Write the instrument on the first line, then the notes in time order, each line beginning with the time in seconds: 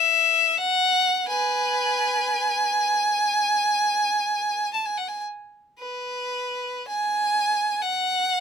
violin
Already playing: E5
0.57 F#5
1.28 B4 G#5
4.74 A5
4.85 G#5
4.98 F#5
5.08 G#5
5.79 B4
6.88 G#5
7.82 F#5